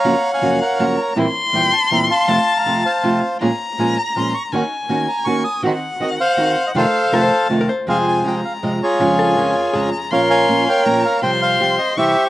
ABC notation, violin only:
X:1
M:3/4
L:1/8
Q:1/4=161
K:Fphr
V:1 name="Violin"
g4 b2 | c'6 | =a4- a z | b6 |
a6 | g6 | f2 =a3 z | [K:Fm] a2 b4 |
a4 b2 | c'4 b2 | c'4 d'2 |]